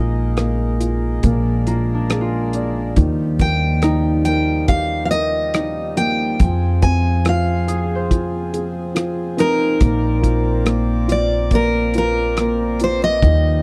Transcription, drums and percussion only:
0.37 cross-stick, closed hi-hat
0.81 closed hi-hat
1.23 kick, closed hi-hat
1.67 closed hi-hat
2.10 cross-stick, closed hi-hat
2.53 closed hi-hat
2.96 kick, closed hi-hat
3.39 kick, closed hi-hat
3.82 cross-stick, closed hi-hat
4.25 closed hi-hat
4.68 kick, closed hi-hat
5.11 closed hi-hat
5.54 cross-stick, closed hi-hat
5.97 closed hi-hat
6.40 kick, closed hi-hat
6.82 kick, closed hi-hat
7.25 cross-stick, closed hi-hat
7.68 closed hi-hat
8.11 kick, closed hi-hat
8.54 closed hi-hat
8.96 cross-stick, closed hi-hat
9.38 closed hi-hat
9.81 kick, closed hi-hat
10.24 kick, closed hi-hat
10.66 cross-stick, closed hi-hat
11.09 closed hi-hat
11.51 kick, closed hi-hat
11.94 closed hi-hat
12.37 cross-stick, closed hi-hat
12.80 closed hi-hat
13.22 kick, closed hi-hat

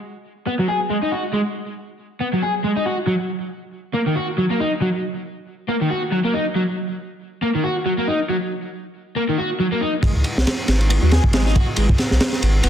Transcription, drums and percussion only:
10.03 kick, ride
10.24 ride
10.38 snare
10.47 snare, ride
10.68 snare, ride
10.81 ride
10.90 ride
11.11 snare, ride
11.24 kick
11.33 snare, ride
11.46 snare
11.56 kick, ride
11.76 ride
11.89 kick
11.98 snare, ride
12.11 snare
12.21 snare, ride
12.33 snare
12.43 ride
12.63 ride

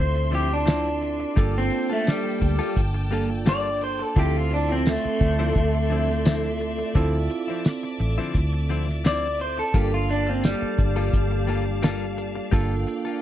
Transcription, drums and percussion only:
0.32 closed hi-hat
0.67 snare, closed hi-hat, tambourine
1.02 closed hi-hat
1.37 kick, closed hi-hat
1.72 closed hi-hat
2.07 snare, closed hi-hat, tambourine
2.42 kick, closed hi-hat
2.77 kick, closed hi-hat
3.12 closed hi-hat
3.46 snare, closed hi-hat, tambourine
3.81 closed hi-hat
4.16 kick, closed hi-hat
4.51 closed hi-hat
4.86 snare, closed hi-hat, tambourine
5.21 kick, closed hi-hat
5.55 kick, closed hi-hat
5.91 closed hi-hat
6.10 snare
6.25 snare, closed hi-hat, tambourine
6.60 closed hi-hat
6.95 kick, closed hi-hat
7.30 closed hi-hat
7.65 snare, closed hi-hat, tambourine
8.00 closed hi-hat
8.19 snare
8.35 kick, closed hi-hat
8.70 closed hi-hat
8.89 snare
9.05 snare, closed hi-hat, tambourine
9.39 closed hi-hat
9.74 kick, closed hi-hat
10.08 closed hi-hat
10.44 snare, closed hi-hat, tambourine
10.79 kick, closed hi-hat
11.13 kick, closed hi-hat
11.48 closed hi-hat
11.83 snare, closed hi-hat, tambourine
12.18 closed hi-hat
12.53 kick, closed hi-hat
12.87 closed hi-hat

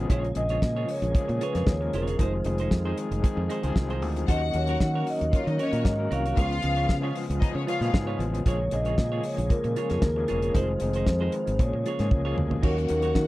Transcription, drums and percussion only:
0.10 kick, closed hi-hat
0.25 closed hi-hat
0.35 closed hi-hat
0.49 closed hi-hat
0.62 kick, snare
0.89 open hi-hat
1.03 closed hi-hat
1.15 kick, closed hi-hat
1.29 closed hi-hat
1.41 closed hi-hat
1.55 snare, closed hi-hat
1.67 kick, snare
1.93 closed hi-hat
2.07 closed hi-hat
2.19 kick, closed hi-hat
2.44 closed hi-hat
2.58 closed hi-hat
2.71 kick, snare
2.98 closed hi-hat
3.12 closed hi-hat
3.24 kick, closed hi-hat
3.50 closed hi-hat
3.63 closed hi-hat
3.76 kick, snare
3.90 closed hi-hat
4.02 open hi-hat
4.16 closed hi-hat
4.28 kick, closed hi-hat
4.54 closed hi-hat
4.67 closed hi-hat
4.80 kick, snare
5.07 open hi-hat
5.21 closed hi-hat
5.33 kick, closed hi-hat
5.48 closed hi-hat
5.59 closed hi-hat
5.73 closed hi-hat
5.85 kick, snare
6.12 closed hi-hat
6.26 closed hi-hat
6.37 kick, closed hi-hat
6.52 closed hi-hat
6.62 closed hi-hat
6.76 closed hi-hat
6.89 kick, snare
7.15 open hi-hat
7.30 closed hi-hat
7.42 kick, closed hi-hat
7.68 closed hi-hat
7.82 snare, closed hi-hat
7.94 kick, snare
8.20 closed hi-hat
8.35 closed hi-hat
8.46 kick, closed hi-hat
8.71 closed hi-hat
8.85 closed hi-hat
8.98 kick, snare
9.23 open hi-hat
9.38 closed hi-hat
9.50 kick, closed hi-hat
9.64 closed hi-hat
9.76 closed hi-hat
9.90 snare, closed hi-hat
10.02 kick, snare
10.28 closed hi-hat
10.42 closed hi-hat
10.55 kick, closed hi-hat
10.80 closed hi-hat
10.93 closed hi-hat
11.06 kick, snare
11.32 closed hi-hat
11.47 closed hi-hat
11.59 kick, closed hi-hat
11.86 closed hi-hat
11.99 snare, closed hi-hat
12.11 kick, high tom
12.38 mid tom
12.51 floor tom
12.63 kick, crash
12.78 closed hi-hat
12.88 closed hi-hat
13.02 closed hi-hat
13.15 kick, snare

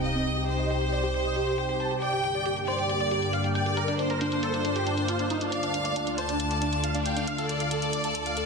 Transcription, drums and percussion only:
0.05 closed hi-hat
0.16 closed hi-hat
0.27 closed hi-hat
0.38 closed hi-hat
0.49 closed hi-hat
0.60 closed hi-hat
0.70 closed hi-hat
0.81 closed hi-hat
0.92 closed hi-hat
1.03 closed hi-hat
1.14 closed hi-hat
1.25 closed hi-hat
1.36 closed hi-hat
1.47 closed hi-hat
1.58 closed hi-hat
1.69 closed hi-hat
1.80 closed hi-hat
1.91 closed hi-hat
2.02 closed hi-hat
2.13 closed hi-hat
2.24 closed hi-hat
2.35 closed hi-hat
2.46 closed hi-hat
2.57 closed hi-hat
2.68 closed hi-hat
2.79 closed hi-hat
2.89 closed hi-hat
3.00 closed hi-hat
3.11 closed hi-hat
3.22 closed hi-hat
3.33 closed hi-hat
3.44 closed hi-hat
3.55 closed hi-hat
3.66 closed hi-hat
3.77 closed hi-hat
3.88 closed hi-hat
3.99 closed hi-hat
4.10 closed hi-hat
4.21 closed hi-hat
4.32 closed hi-hat
4.43 closed hi-hat
4.54 closed hi-hat
4.65 closed hi-hat
4.76 closed hi-hat
4.87 closed hi-hat
4.98 closed hi-hat
5.08 closed hi-hat
5.19 closed hi-hat
5.30 closed hi-hat
5.41 closed hi-hat
5.52 closed hi-hat
5.63 closed hi-hat
5.74 closed hi-hat
5.85 closed hi-hat
5.96 closed hi-hat
6.07 closed hi-hat
6.18 closed hi-hat
6.29 closed hi-hat
6.40 closed hi-hat
6.51 closed hi-hat
6.62 closed hi-hat
6.73 closed hi-hat
6.84 closed hi-hat
6.95 closed hi-hat
7.06 closed hi-hat
7.17 closed hi-hat
7.27 closed hi-hat
7.38 closed hi-hat
7.49 closed hi-hat
7.60 closed hi-hat
7.71 closed hi-hat
7.82 closed hi-hat
7.93 closed hi-hat
8.04 closed hi-hat
8.15 closed hi-hat
8.26 closed hi-hat
8.37 closed hi-hat

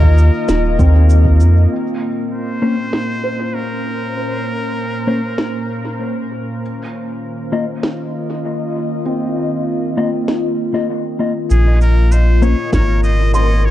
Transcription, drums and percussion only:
0.03 kick
0.18 cabasa
0.49 snare, cabasa
0.79 kick, cabasa
1.10 cabasa
1.25 kick
1.40 cabasa
2.93 snare
5.38 snare
7.83 snare
10.28 snare
11.50 cabasa
11.81 cabasa
12.12 cabasa
12.42 cabasa
12.73 kick, snare, cabasa
13.03 cabasa
13.34 cabasa

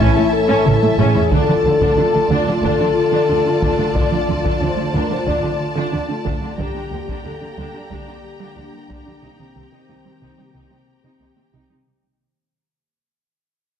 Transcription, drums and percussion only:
0.00 taiko
0.66 taiko mid
0.83 taiko high
0.99 taiko low-mid
1.16 taiko low
1.32 taiko
1.81 taiko
2.64 taiko
3.63 taiko
3.96 taiko
4.45 taiko
5.28 taiko
6.27 taiko
6.59 taiko
7.09 taiko
7.92 taiko
8.90 taiko

